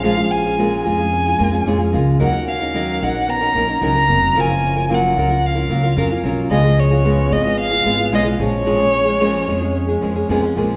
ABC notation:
X:1
M:4/4
L:1/16
Q:1/4=111
K:Bbphr
V:1 name="Violin"
f2 a4 a8 z2 | g2 f4 g2 b4 b4 | a4 g4 f6 z2 | e2 d4 e2 f4 e2 d2- |
d12 z4 |]
V:2 name="Nylon-string guitar"
[B,,A,DFA] [DFA]2 [DFA] [B,,A,DFA]2 [A,DFA] [DFA]2 [DFA] [A,DFA] [DFA] [B,,A,DFA] [DFA] [A,DFA]2 | [E,G,DEB] [DEB]2 [DEB] [E,G,DEB]2 [G,DEB] [DEB]2 [DEB] [G,DEB] [DEB] [E,G,DEB] [DEB] [G,DEB]2 | [G,DFB] [DFB]2 [DFB] [G,DFB]2 [G,DFB] [DFB]2 [DFB] [G,DFB] [DFB] [G,DFB] [DFB] [G,DFB]2 | [D,A,CFA] [CFA]2 [CFA] [D,A,CFA]2 [A,CFA] [CFA]2 [CFA] [A,CFA] [CFA] [D,A,CFA] [CFA] [F,A,DA]2 |
[B,,F,A,DA] [A,DA]2 [A,DA] [B,,F,A,DA]2 [F,A,DA] [A,DA]2 [A,DA] [F,A,DA] [A,DA] [B,,F,A,DA] [A,DA] [F,A,DA]2 |]
V:3 name="Steel-string acoustic guitar"
[F,A]2 D2 B,2 A2 D2 B,2 D2 B,2 | [B,G]2 D2 B,2 G2 C D B,2 D2 B,2 | [F,F]2 D2 B,2 F2 D2 B,2 D2 B,2 | [F,A]2 D2 C2 A2 D2 C2 D2 F,2 |
[F,A]2 D2 B,2 A2 D2 B,2 C D B,2 |]
V:4 name="Upright bass" clef=bass
B,,,6 F,,4 F,,2 F,,2 D,,2 | E,,6 B,,,4 B,,,2 D,,2 F,,,2 | G,,,6 D,,4 D,,2 F,,2 C,,2 | D,,6 A,,,4 A,,,2 C,,2 B,,,2- |
B,,,6 F,,4 F,,2 F,,2 B,,,2 |]